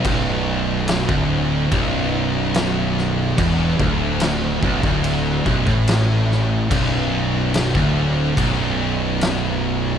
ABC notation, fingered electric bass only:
X:1
M:4/4
L:1/16
Q:1/4=72
K:Bm
V:1 name="Fingered electric bass" clef=bass
B,,,,4- B,,,, D,,,3 B,,,,8 | E,,,2 D,,,4 B,,,, D,,,3 B,,,, A,,,4- A,,, | B,,,,4- B,,,, D,,,3 B,,,,8 |]